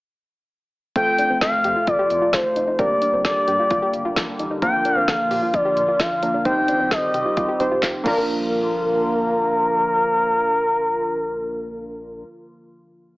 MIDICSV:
0, 0, Header, 1, 7, 480
1, 0, Start_track
1, 0, Key_signature, -2, "major"
1, 0, Tempo, 458015
1, 1004, Time_signature, 4, 2, 24, 8
1, 13802, End_track
2, 0, Start_track
2, 0, Title_t, "Analog synth lead"
2, 0, Program_c, 0, 81
2, 1007, Note_on_c, 0, 79, 111
2, 1452, Note_off_c, 0, 79, 0
2, 1486, Note_on_c, 0, 77, 104
2, 1965, Note_on_c, 0, 74, 98
2, 1981, Note_off_c, 0, 77, 0
2, 2446, Note_on_c, 0, 72, 90
2, 2462, Note_off_c, 0, 74, 0
2, 2919, Note_off_c, 0, 72, 0
2, 2925, Note_on_c, 0, 74, 96
2, 3371, Note_off_c, 0, 74, 0
2, 3406, Note_on_c, 0, 74, 83
2, 4083, Note_off_c, 0, 74, 0
2, 4844, Note_on_c, 0, 79, 112
2, 5211, Note_off_c, 0, 79, 0
2, 5211, Note_on_c, 0, 77, 112
2, 5326, Note_off_c, 0, 77, 0
2, 5326, Note_on_c, 0, 77, 106
2, 5806, Note_on_c, 0, 74, 94
2, 5821, Note_off_c, 0, 77, 0
2, 6285, Note_on_c, 0, 77, 99
2, 6301, Note_off_c, 0, 74, 0
2, 6760, Note_off_c, 0, 77, 0
2, 6766, Note_on_c, 0, 79, 105
2, 7247, Note_on_c, 0, 75, 86
2, 7263, Note_off_c, 0, 79, 0
2, 7966, Note_off_c, 0, 75, 0
2, 8443, Note_on_c, 0, 70, 102
2, 12820, Note_off_c, 0, 70, 0
2, 13802, End_track
3, 0, Start_track
3, 0, Title_t, "Synth arpeggio sound"
3, 0, Program_c, 1, 84
3, 1004, Note_on_c, 1, 60, 94
3, 1163, Note_off_c, 1, 60, 0
3, 1243, Note_on_c, 1, 62, 78
3, 1323, Note_off_c, 1, 62, 0
3, 1364, Note_on_c, 1, 60, 76
3, 1444, Note_off_c, 1, 60, 0
3, 1484, Note_on_c, 1, 69, 85
3, 1644, Note_off_c, 1, 69, 0
3, 1725, Note_on_c, 1, 67, 80
3, 1804, Note_off_c, 1, 67, 0
3, 1845, Note_on_c, 1, 65, 74
3, 1925, Note_off_c, 1, 65, 0
3, 1965, Note_on_c, 1, 65, 86
3, 2044, Note_off_c, 1, 65, 0
3, 2085, Note_on_c, 1, 67, 77
3, 2245, Note_off_c, 1, 67, 0
3, 2324, Note_on_c, 1, 65, 75
3, 2404, Note_off_c, 1, 65, 0
3, 2444, Note_on_c, 1, 65, 79
3, 2603, Note_off_c, 1, 65, 0
3, 2684, Note_on_c, 1, 63, 78
3, 2764, Note_off_c, 1, 63, 0
3, 2805, Note_on_c, 1, 63, 76
3, 2884, Note_off_c, 1, 63, 0
3, 2925, Note_on_c, 1, 60, 94
3, 3084, Note_off_c, 1, 60, 0
3, 3164, Note_on_c, 1, 62, 78
3, 3244, Note_off_c, 1, 62, 0
3, 3285, Note_on_c, 1, 60, 75
3, 3364, Note_off_c, 1, 60, 0
3, 3405, Note_on_c, 1, 69, 85
3, 3565, Note_off_c, 1, 69, 0
3, 3646, Note_on_c, 1, 67, 81
3, 3725, Note_off_c, 1, 67, 0
3, 3765, Note_on_c, 1, 65, 73
3, 3845, Note_off_c, 1, 65, 0
3, 3886, Note_on_c, 1, 65, 88
3, 3965, Note_off_c, 1, 65, 0
3, 4006, Note_on_c, 1, 67, 75
3, 4165, Note_off_c, 1, 67, 0
3, 4246, Note_on_c, 1, 65, 77
3, 4325, Note_off_c, 1, 65, 0
3, 4366, Note_on_c, 1, 65, 83
3, 4525, Note_off_c, 1, 65, 0
3, 4607, Note_on_c, 1, 63, 81
3, 4686, Note_off_c, 1, 63, 0
3, 4725, Note_on_c, 1, 63, 75
3, 4804, Note_off_c, 1, 63, 0
3, 4846, Note_on_c, 1, 60, 91
3, 5005, Note_off_c, 1, 60, 0
3, 5085, Note_on_c, 1, 62, 81
3, 5165, Note_off_c, 1, 62, 0
3, 5204, Note_on_c, 1, 60, 76
3, 5284, Note_off_c, 1, 60, 0
3, 5324, Note_on_c, 1, 69, 86
3, 5483, Note_off_c, 1, 69, 0
3, 5563, Note_on_c, 1, 67, 84
3, 5643, Note_off_c, 1, 67, 0
3, 5685, Note_on_c, 1, 65, 73
3, 5764, Note_off_c, 1, 65, 0
3, 5805, Note_on_c, 1, 65, 90
3, 5884, Note_off_c, 1, 65, 0
3, 5924, Note_on_c, 1, 67, 76
3, 6083, Note_off_c, 1, 67, 0
3, 6165, Note_on_c, 1, 65, 78
3, 6245, Note_off_c, 1, 65, 0
3, 6284, Note_on_c, 1, 65, 81
3, 6444, Note_off_c, 1, 65, 0
3, 6524, Note_on_c, 1, 62, 81
3, 6604, Note_off_c, 1, 62, 0
3, 6645, Note_on_c, 1, 62, 75
3, 6724, Note_off_c, 1, 62, 0
3, 6763, Note_on_c, 1, 60, 97
3, 6923, Note_off_c, 1, 60, 0
3, 7003, Note_on_c, 1, 62, 82
3, 7083, Note_off_c, 1, 62, 0
3, 7123, Note_on_c, 1, 60, 74
3, 7203, Note_off_c, 1, 60, 0
3, 7243, Note_on_c, 1, 69, 84
3, 7403, Note_off_c, 1, 69, 0
3, 7484, Note_on_c, 1, 67, 81
3, 7564, Note_off_c, 1, 67, 0
3, 7604, Note_on_c, 1, 65, 75
3, 7684, Note_off_c, 1, 65, 0
3, 7724, Note_on_c, 1, 65, 89
3, 7804, Note_off_c, 1, 65, 0
3, 7845, Note_on_c, 1, 67, 76
3, 8004, Note_off_c, 1, 67, 0
3, 8085, Note_on_c, 1, 65, 75
3, 8164, Note_off_c, 1, 65, 0
3, 8205, Note_on_c, 1, 65, 80
3, 8365, Note_off_c, 1, 65, 0
3, 8445, Note_on_c, 1, 58, 73
3, 8487, Note_on_c, 1, 62, 74
3, 8528, Note_on_c, 1, 65, 71
3, 8571, Note_on_c, 1, 70, 74
3, 12822, Note_off_c, 1, 58, 0
3, 12864, Note_off_c, 1, 62, 0
3, 12906, Note_off_c, 1, 65, 0
3, 12948, Note_off_c, 1, 70, 0
3, 13802, End_track
4, 0, Start_track
4, 0, Title_t, "Synth keys"
4, 0, Program_c, 2, 88
4, 1005, Note_on_c, 2, 57, 67
4, 1005, Note_on_c, 2, 60, 57
4, 1005, Note_on_c, 2, 65, 60
4, 1005, Note_on_c, 2, 69, 70
4, 2886, Note_off_c, 2, 57, 0
4, 2886, Note_off_c, 2, 60, 0
4, 2886, Note_off_c, 2, 65, 0
4, 2886, Note_off_c, 2, 69, 0
4, 2924, Note_on_c, 2, 58, 65
4, 2924, Note_on_c, 2, 62, 59
4, 2925, Note_on_c, 2, 67, 60
4, 2925, Note_on_c, 2, 70, 72
4, 4805, Note_off_c, 2, 62, 0
4, 4806, Note_off_c, 2, 58, 0
4, 4806, Note_off_c, 2, 67, 0
4, 4806, Note_off_c, 2, 70, 0
4, 4844, Note_on_c, 2, 62, 59
4, 4844, Note_on_c, 2, 65, 61
4, 4844, Note_on_c, 2, 70, 74
4, 4845, Note_on_c, 2, 58, 66
4, 6490, Note_off_c, 2, 70, 0
4, 6491, Note_off_c, 2, 58, 0
4, 6491, Note_off_c, 2, 62, 0
4, 6491, Note_off_c, 2, 65, 0
4, 6525, Note_on_c, 2, 58, 52
4, 6525, Note_on_c, 2, 62, 45
4, 6525, Note_on_c, 2, 65, 47
4, 6525, Note_on_c, 2, 70, 56
4, 6764, Note_off_c, 2, 58, 0
4, 6764, Note_off_c, 2, 62, 0
4, 6764, Note_off_c, 2, 65, 0
4, 6764, Note_off_c, 2, 70, 0
4, 6765, Note_on_c, 2, 60, 67
4, 6765, Note_on_c, 2, 63, 63
4, 6765, Note_on_c, 2, 67, 59
4, 6765, Note_on_c, 2, 72, 75
4, 7940, Note_off_c, 2, 60, 0
4, 7940, Note_off_c, 2, 63, 0
4, 7940, Note_off_c, 2, 67, 0
4, 7941, Note_off_c, 2, 72, 0
4, 7964, Note_on_c, 2, 67, 57
4, 7965, Note_on_c, 2, 60, 64
4, 7965, Note_on_c, 2, 63, 56
4, 7965, Note_on_c, 2, 72, 72
4, 8423, Note_on_c, 2, 58, 88
4, 8437, Note_on_c, 2, 62, 77
4, 8444, Note_off_c, 2, 60, 0
4, 8444, Note_off_c, 2, 63, 0
4, 8444, Note_off_c, 2, 67, 0
4, 8444, Note_off_c, 2, 72, 0
4, 8451, Note_on_c, 2, 65, 78
4, 8465, Note_on_c, 2, 70, 94
4, 12800, Note_off_c, 2, 58, 0
4, 12814, Note_off_c, 2, 62, 0
4, 12829, Note_off_c, 2, 65, 0
4, 12842, Note_off_c, 2, 70, 0
4, 13802, End_track
5, 0, Start_track
5, 0, Title_t, "Analog synth pad"
5, 0, Program_c, 3, 89
5, 1002, Note_on_c, 3, 48, 79
5, 1002, Note_on_c, 3, 53, 70
5, 1002, Note_on_c, 3, 57, 74
5, 1003, Note_on_c, 3, 65, 88
5, 2904, Note_off_c, 3, 48, 0
5, 2904, Note_off_c, 3, 53, 0
5, 2904, Note_off_c, 3, 57, 0
5, 2904, Note_off_c, 3, 65, 0
5, 2924, Note_on_c, 3, 50, 79
5, 2924, Note_on_c, 3, 58, 72
5, 2925, Note_on_c, 3, 55, 74
5, 2925, Note_on_c, 3, 67, 89
5, 4825, Note_off_c, 3, 55, 0
5, 4825, Note_off_c, 3, 67, 0
5, 4845, Note_on_c, 3, 53, 73
5, 4845, Note_on_c, 3, 65, 91
5, 6725, Note_off_c, 3, 58, 0
5, 6726, Note_off_c, 3, 50, 0
5, 6745, Note_off_c, 3, 53, 0
5, 6745, Note_off_c, 3, 65, 0
5, 6766, Note_on_c, 3, 51, 82
5, 6766, Note_on_c, 3, 55, 74
5, 6766, Note_on_c, 3, 60, 71
5, 6767, Note_on_c, 3, 67, 92
5, 8428, Note_off_c, 3, 51, 0
5, 8428, Note_off_c, 3, 55, 0
5, 8428, Note_off_c, 3, 60, 0
5, 8428, Note_off_c, 3, 67, 0
5, 8446, Note_on_c, 3, 50, 76
5, 8446, Note_on_c, 3, 53, 70
5, 8446, Note_on_c, 3, 58, 70
5, 8446, Note_on_c, 3, 65, 87
5, 12823, Note_off_c, 3, 50, 0
5, 12823, Note_off_c, 3, 53, 0
5, 12823, Note_off_c, 3, 58, 0
5, 12824, Note_off_c, 3, 65, 0
5, 13802, End_track
6, 0, Start_track
6, 0, Title_t, "Analog synth bass"
6, 0, Program_c, 4, 38
6, 1003, Note_on_c, 4, 29, 108
6, 1113, Note_off_c, 4, 29, 0
6, 1122, Note_on_c, 4, 29, 97
6, 1232, Note_off_c, 4, 29, 0
6, 1362, Note_on_c, 4, 29, 93
6, 1472, Note_off_c, 4, 29, 0
6, 1485, Note_on_c, 4, 29, 97
6, 1594, Note_off_c, 4, 29, 0
6, 1723, Note_on_c, 4, 41, 109
6, 1833, Note_off_c, 4, 41, 0
6, 1965, Note_on_c, 4, 29, 106
6, 2074, Note_off_c, 4, 29, 0
6, 2204, Note_on_c, 4, 41, 103
6, 2313, Note_off_c, 4, 41, 0
6, 2446, Note_on_c, 4, 29, 91
6, 2555, Note_off_c, 4, 29, 0
6, 2684, Note_on_c, 4, 29, 100
6, 2793, Note_off_c, 4, 29, 0
6, 2924, Note_on_c, 4, 31, 108
6, 3033, Note_off_c, 4, 31, 0
6, 3045, Note_on_c, 4, 31, 99
6, 3154, Note_off_c, 4, 31, 0
6, 3286, Note_on_c, 4, 31, 99
6, 3394, Note_off_c, 4, 31, 0
6, 3405, Note_on_c, 4, 31, 102
6, 3514, Note_off_c, 4, 31, 0
6, 3645, Note_on_c, 4, 43, 98
6, 3754, Note_off_c, 4, 43, 0
6, 3886, Note_on_c, 4, 31, 104
6, 3994, Note_off_c, 4, 31, 0
6, 4123, Note_on_c, 4, 31, 91
6, 4233, Note_off_c, 4, 31, 0
6, 4244, Note_on_c, 4, 31, 96
6, 4353, Note_off_c, 4, 31, 0
6, 4367, Note_on_c, 4, 34, 96
6, 4475, Note_off_c, 4, 34, 0
6, 4603, Note_on_c, 4, 33, 92
6, 4713, Note_off_c, 4, 33, 0
6, 4844, Note_on_c, 4, 34, 100
6, 4953, Note_off_c, 4, 34, 0
6, 4963, Note_on_c, 4, 34, 98
6, 5073, Note_off_c, 4, 34, 0
6, 5204, Note_on_c, 4, 34, 102
6, 5313, Note_off_c, 4, 34, 0
6, 5326, Note_on_c, 4, 34, 101
6, 5434, Note_off_c, 4, 34, 0
6, 5562, Note_on_c, 4, 46, 104
6, 5672, Note_off_c, 4, 46, 0
6, 5806, Note_on_c, 4, 34, 112
6, 5914, Note_off_c, 4, 34, 0
6, 6043, Note_on_c, 4, 46, 86
6, 6153, Note_off_c, 4, 46, 0
6, 6286, Note_on_c, 4, 34, 103
6, 6394, Note_off_c, 4, 34, 0
6, 6524, Note_on_c, 4, 34, 102
6, 6633, Note_off_c, 4, 34, 0
6, 6763, Note_on_c, 4, 36, 110
6, 6873, Note_off_c, 4, 36, 0
6, 6884, Note_on_c, 4, 36, 99
6, 6993, Note_off_c, 4, 36, 0
6, 7124, Note_on_c, 4, 36, 97
6, 7233, Note_off_c, 4, 36, 0
6, 7246, Note_on_c, 4, 36, 105
6, 7355, Note_off_c, 4, 36, 0
6, 7483, Note_on_c, 4, 48, 101
6, 7593, Note_off_c, 4, 48, 0
6, 7726, Note_on_c, 4, 36, 111
6, 7834, Note_off_c, 4, 36, 0
6, 7965, Note_on_c, 4, 36, 97
6, 8074, Note_off_c, 4, 36, 0
6, 8086, Note_on_c, 4, 36, 96
6, 8194, Note_off_c, 4, 36, 0
6, 8207, Note_on_c, 4, 39, 93
6, 8315, Note_off_c, 4, 39, 0
6, 8444, Note_on_c, 4, 34, 103
6, 12822, Note_off_c, 4, 34, 0
6, 13802, End_track
7, 0, Start_track
7, 0, Title_t, "Drums"
7, 1003, Note_on_c, 9, 36, 109
7, 1004, Note_on_c, 9, 42, 68
7, 1108, Note_off_c, 9, 36, 0
7, 1108, Note_off_c, 9, 42, 0
7, 1241, Note_on_c, 9, 42, 76
7, 1346, Note_off_c, 9, 42, 0
7, 1482, Note_on_c, 9, 38, 114
7, 1485, Note_on_c, 9, 36, 113
7, 1485, Note_on_c, 9, 42, 83
7, 1587, Note_off_c, 9, 38, 0
7, 1589, Note_off_c, 9, 36, 0
7, 1590, Note_off_c, 9, 42, 0
7, 1721, Note_on_c, 9, 42, 76
7, 1826, Note_off_c, 9, 42, 0
7, 1961, Note_on_c, 9, 42, 70
7, 1965, Note_on_c, 9, 36, 113
7, 2066, Note_off_c, 9, 42, 0
7, 2070, Note_off_c, 9, 36, 0
7, 2204, Note_on_c, 9, 42, 65
7, 2309, Note_off_c, 9, 42, 0
7, 2443, Note_on_c, 9, 38, 118
7, 2443, Note_on_c, 9, 42, 66
7, 2446, Note_on_c, 9, 36, 114
7, 2547, Note_off_c, 9, 38, 0
7, 2547, Note_off_c, 9, 42, 0
7, 2551, Note_off_c, 9, 36, 0
7, 2684, Note_on_c, 9, 42, 73
7, 2789, Note_off_c, 9, 42, 0
7, 2922, Note_on_c, 9, 42, 66
7, 2924, Note_on_c, 9, 36, 111
7, 3027, Note_off_c, 9, 42, 0
7, 3028, Note_off_c, 9, 36, 0
7, 3162, Note_on_c, 9, 42, 76
7, 3267, Note_off_c, 9, 42, 0
7, 3403, Note_on_c, 9, 38, 116
7, 3405, Note_on_c, 9, 36, 118
7, 3406, Note_on_c, 9, 42, 81
7, 3508, Note_off_c, 9, 38, 0
7, 3510, Note_off_c, 9, 36, 0
7, 3511, Note_off_c, 9, 42, 0
7, 3643, Note_on_c, 9, 42, 78
7, 3748, Note_off_c, 9, 42, 0
7, 3882, Note_on_c, 9, 42, 71
7, 3886, Note_on_c, 9, 36, 114
7, 3987, Note_off_c, 9, 42, 0
7, 3991, Note_off_c, 9, 36, 0
7, 4124, Note_on_c, 9, 42, 65
7, 4229, Note_off_c, 9, 42, 0
7, 4364, Note_on_c, 9, 38, 118
7, 4364, Note_on_c, 9, 42, 67
7, 4367, Note_on_c, 9, 36, 118
7, 4469, Note_off_c, 9, 38, 0
7, 4469, Note_off_c, 9, 42, 0
7, 4472, Note_off_c, 9, 36, 0
7, 4605, Note_on_c, 9, 42, 76
7, 4710, Note_off_c, 9, 42, 0
7, 4844, Note_on_c, 9, 36, 115
7, 4844, Note_on_c, 9, 42, 68
7, 4949, Note_off_c, 9, 36, 0
7, 4949, Note_off_c, 9, 42, 0
7, 5083, Note_on_c, 9, 42, 76
7, 5188, Note_off_c, 9, 42, 0
7, 5324, Note_on_c, 9, 38, 117
7, 5326, Note_on_c, 9, 36, 118
7, 5327, Note_on_c, 9, 42, 81
7, 5429, Note_off_c, 9, 38, 0
7, 5431, Note_off_c, 9, 36, 0
7, 5432, Note_off_c, 9, 42, 0
7, 5564, Note_on_c, 9, 46, 55
7, 5668, Note_off_c, 9, 46, 0
7, 5803, Note_on_c, 9, 42, 70
7, 5806, Note_on_c, 9, 36, 118
7, 5908, Note_off_c, 9, 42, 0
7, 5911, Note_off_c, 9, 36, 0
7, 6045, Note_on_c, 9, 42, 66
7, 6149, Note_off_c, 9, 42, 0
7, 6284, Note_on_c, 9, 38, 122
7, 6284, Note_on_c, 9, 42, 67
7, 6286, Note_on_c, 9, 36, 115
7, 6389, Note_off_c, 9, 38, 0
7, 6389, Note_off_c, 9, 42, 0
7, 6391, Note_off_c, 9, 36, 0
7, 6525, Note_on_c, 9, 42, 78
7, 6630, Note_off_c, 9, 42, 0
7, 6763, Note_on_c, 9, 42, 66
7, 6764, Note_on_c, 9, 36, 108
7, 6868, Note_off_c, 9, 36, 0
7, 6868, Note_off_c, 9, 42, 0
7, 7003, Note_on_c, 9, 42, 77
7, 7108, Note_off_c, 9, 42, 0
7, 7244, Note_on_c, 9, 38, 118
7, 7246, Note_on_c, 9, 36, 118
7, 7247, Note_on_c, 9, 42, 83
7, 7349, Note_off_c, 9, 38, 0
7, 7350, Note_off_c, 9, 36, 0
7, 7352, Note_off_c, 9, 42, 0
7, 7484, Note_on_c, 9, 42, 79
7, 7589, Note_off_c, 9, 42, 0
7, 7723, Note_on_c, 9, 42, 72
7, 7726, Note_on_c, 9, 36, 117
7, 7828, Note_off_c, 9, 42, 0
7, 7831, Note_off_c, 9, 36, 0
7, 7964, Note_on_c, 9, 42, 68
7, 8069, Note_off_c, 9, 42, 0
7, 8204, Note_on_c, 9, 38, 120
7, 8204, Note_on_c, 9, 39, 101
7, 8204, Note_on_c, 9, 42, 72
7, 8207, Note_on_c, 9, 36, 118
7, 8309, Note_off_c, 9, 38, 0
7, 8309, Note_off_c, 9, 39, 0
7, 8309, Note_off_c, 9, 42, 0
7, 8311, Note_off_c, 9, 36, 0
7, 8444, Note_on_c, 9, 36, 112
7, 8444, Note_on_c, 9, 49, 94
7, 8549, Note_off_c, 9, 36, 0
7, 8549, Note_off_c, 9, 49, 0
7, 13802, End_track
0, 0, End_of_file